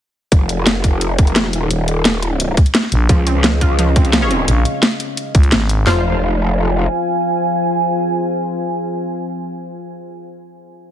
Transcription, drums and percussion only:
0.32 kick loud
0.32 closed hi-hat loud
0.49 closed hi-hat medium
0.67 snare loud
0.67 closed hi-hat loud
0.84 kick medium
0.84 closed hi-hat medium
1.01 closed hi-hat medium
1.19 kick loud
1.19 closed hi-hat medium
1.27 closed hi-hat soft
1.36 snare loud
1.36 closed hi-hat loud
1.45 snare soft
1.53 closed hi-hat medium
1.71 closed hi-hat loud
1.88 closed hi-hat medium
2.05 snare loud
2.05 closed hi-hat loud
2.23 closed hi-hat medium
2.40 closed hi-hat medium
2.57 kick loud
2.57 closed hi-hat medium
2.66 closed hi-hat soft
2.75 snare loud
2.75 closed hi-hat loud
2.83 snare soft
2.92 closed hi-hat medium
3.09 kick loud
3.09 closed hi-hat loud
3.27 closed hi-hat medium
3.44 snare loud
3.44 closed hi-hat loud
3.61 kick medium
3.61 closed hi-hat medium
3.79 closed hi-hat medium
3.96 kick loud
3.96 closed hi-hat medium
4.05 closed hi-hat soft
4.13 snare loud
4.13 closed hi-hat medium
4.22 snare soft
4.31 closed hi-hat medium
4.48 closed hi-hat loud
4.65 closed hi-hat medium
4.83 snare loud
4.83 closed hi-hat loud
5.00 closed hi-hat medium
5.17 closed hi-hat medium
5.35 kick loud
5.35 closed hi-hat medium
5.43 closed hi-hat soft
5.52 snare loud
5.52 closed hi-hat medium
5.61 snare soft
5.69 closed hi-hat medium
5.87 snare loud
5.87 clap medium
5.87 floor tom loud

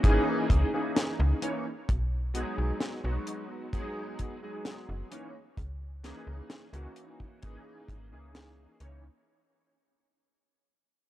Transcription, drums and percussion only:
0.04 kick loud
0.04 closed hi-hat medium
0.50 kick medium
0.50 closed hi-hat medium
0.96 snare loud
0.96 closed hi-hat medium
1.42 closed hi-hat medium
1.89 kick loud
1.89 closed hi-hat medium
2.35 closed hi-hat medium
2.81 snare loud
2.81 closed hi-hat medium
3.27 closed hi-hat medium
3.73 kick loud
3.73 closed hi-hat medium
4.19 kick medium
4.19 closed hi-hat medium
4.65 snare loud
4.65 closed hi-hat medium
5.12 closed hi-hat medium
5.57 kick loud
5.57 closed hi-hat medium
6.04 snare medium
6.04 closed hi-hat medium
6.50 snare loud
6.50 closed hi-hat medium
6.74 closed hi-hat medium
6.96 closed hi-hat medium
7.20 kick medium
7.42 kick medium
7.42 closed hi-hat medium
7.89 kick medium
7.89 closed hi-hat medium
8.35 snare loud
8.35 closed hi-hat medium
8.80 closed hi-hat medium

